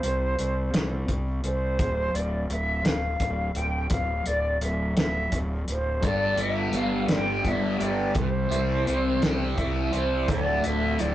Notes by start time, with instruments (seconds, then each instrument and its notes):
Already playing: flute C5
0.03 fingered electric bass C2, closed hi-hat
0.39 fingered electric bass C2, closed hi-hat
0.74 fingered electric bass C2, snare, closed hi-hat
1.08 fingered electric bass C2, kick, closed hi-hat
1.44 fingered electric bass C2, flute C5, closed hi-hat
1.79 fingered electric bass D1, kick, closed hi-hat
2.13 fingered electric bass D1, flute D5, closed hi-hat
2.49 fingered electric bass D1, flute E5, closed hi-hat
2.85 fingered electric bass D1, flute F5, snare, closed hi-hat
3.20 fingered electric bass D1, kick, closed hi-hat
3.55 fingered electric bass D1, flute G5, closed hi-hat
3.90 fingered electric bass D1, flute F5, kick, closed hi-hat
4.26 fingered electric bass D1, flute D5, closed hi-hat
4.61 fingered electric bass D1, flute E5, closed hi-hat
4.97 fingered electric bass D1, flute E5, snare, closed hi-hat
5.32 fingered electric bass D1, kick, closed hi-hat
5.67 fingered electric bass D1, flute C5, closed hi-hat
6.00 fingered electric bass G1, distorted electric guitar G2, transistor combo organ G3 B3 D4 A4, kick, closed hi-hat
6.05 flute D5
6.38 fingered electric bass G1, distorted electric guitar B3, flute E5, closed hi-hat
6.73 fingered electric bass G1, distorted electric guitar G3, closed hi-hat
6.78 flute F5
7.08 fingered electric bass G1, distorted electric guitar D4, snare, closed hi-hat
7.13 flute G5
7.44 fingered electric bass G1, distorted electric guitar B3, flute E5, kick, closed hi-hat
7.80 fingered electric bass G1, distorted electric guitar G4, flute D5, closed hi-hat
8.15 fingered electric bass C2, distorted electric guitar C3, transistor combo organ E3 C4 G4, kick, closed hi-hat
8.19 flute C5
8.51 fingered electric bass C2, distorted electric guitar E4, closed hi-hat
8.87 fingered electric bass C2, distorted electric guitar C4, closed hi-hat
9.22 fingered electric bass C2, distorted electric guitar G4, snare, closed hi-hat
9.57 fingered electric bass C2, distorted electric guitar E4, kick, closed hi-hat
9.93 fingered electric bass C2, distorted electric guitar C5, flute C5, closed hi-hat
10.28 fingered electric bass D1, distorted electric guitar D2, transistor combo organ F3 D4 E4 A4, flute D5, kick, closed hi-hat
10.64 fingered electric bass D1, distorted electric guitar D3, flute E5, closed hi-hat
10.99 fingered electric bass D1, distorted electric guitar A2, flute D5, closed hi-hat